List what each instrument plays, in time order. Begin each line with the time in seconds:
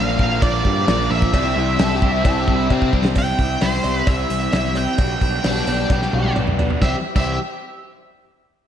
Already playing: picked electric bass A#1, overdriven electric guitar A#2 D3 F3 A#3 D4, string machine D4 F4 A#4, lead electric guitar F5
0.18 picked electric bass A#1, overdriven electric guitar A#2 F3 A#3, kick
0.42 picked electric bass A#1, overdriven electric guitar A#2 D3 F3 A#3 D4, lead electric guitar D5, kick, cowbell, crash
0.64 picked electric bass G2, overdriven electric guitar F3 A#3 D4, kick
0.87 picked electric bass A#1, overdriven electric guitar A#2 D3 F3 A#3 D4, snare, cowbell, crash
1.10 picked electric bass A#1, overdriven electric guitar F3 A#3 D4, lead electric guitar E5
1.22 kick
1.32 picked electric bass C2, overdriven electric guitar C3 G3 C4 E4, string machine D4 E4 C5, kick, cowbell, crash
1.55 picked electric bass C2, overdriven electric guitar G3 C4 E4
1.78 picked electric bass C2, overdriven electric guitar C3 G3 C4 E4 A4, snare, cowbell, crash
1.96 overdriven electric guitar G4
2.02 picked electric bass C2, overdriven electric guitar C3 G3 C4, kick
2.12 overdriven electric guitar E4
2.23 picked electric bass C2, overdriven electric guitar C3 G3 C4 E4 A4, kick, cowbell, crash
2.41 overdriven electric guitar G4
2.46 picked electric bass C2, overdriven electric guitar G3 C4 E4, kick
2.56 overdriven electric guitar E4
2.69 overdriven electric guitar C3 G3 C4 E4, picked electric bass C3, kick, cowbell
2.82 kick
2.93 picked electric bass C2, overdriven electric guitar G3 C4 E4, kick
3.05 snare
3.15 picked electric bass C2, overdriven electric guitar C3 G3 C4 E4, string machine E4 G4 C5, lead electric guitar G5, kick, open hi-hat, cowbell
3.38 picked electric bass C2, overdriven electric guitar G3 C4 E4, kick, open hi-hat
3.61 picked electric bass C2, overdriven electric guitar C3 G3 C4 E4, lead electric guitar C5, snare, open hi-hat, cowbell
3.84 picked electric bass C2, overdriven electric guitar G3 C4 E4, open hi-hat, cowbell
3.97 lead electric guitar B4
4.07 picked electric bass C2, overdriven electric guitar C3 G3 C4 E4, lead electric guitar E5, kick, open hi-hat, cowbell
4.30 picked electric bass C2, open hi-hat
4.52 picked electric bass C2, overdriven electric guitar C3 G3 C4 E4, lead electric guitar E5, snare, open hi-hat, cowbell
4.75 overdriven electric guitar G3 C4 E4, lead electric guitar G5, open hi-hat, cowbell
4.98 picked electric bass B1, overdriven electric guitar B2 G3 B3 D4, string machine D4 G4 B4, kick, open hi-hat, cowbell
5.21 picked electric bass B1, overdriven electric guitar G3 B3 D4, kick, open hi-hat
5.44 picked electric bass B1, overdriven electric guitar B2 G3 B3 D4, snare, open hi-hat, cowbell
5.56 snare
5.67 picked electric bass B1, overdriven electric guitar G3 B3 D4, open hi-hat, cowbell
5.90 picked electric bass B1, overdriven electric guitar B2 G3 B3 D4 G4, kick, snare, cowbell
6.02 snare
6.13 picked electric bass B1, overdriven electric guitar G4, high tom
6.25 high tom
6.35 picked electric bass B1, overdriven electric guitar B2 G3 B3 D4, mid tom, cowbell
6.47 mid tom
6.59 overdriven electric guitar G3 B3 D4, floor tom, cowbell
6.70 floor tom
6.81 picked electric bass C2, overdriven electric guitar C3 E3 G3 C4 E4 G4 C5, string machine E4 G4 C5, lead electric guitar E5, kick, snare, cowbell
7.15 picked electric bass C2, overdriven electric guitar C3 E3 G3 C4 E4 G4 C5, lead electric guitar E5, kick, crash, cowbell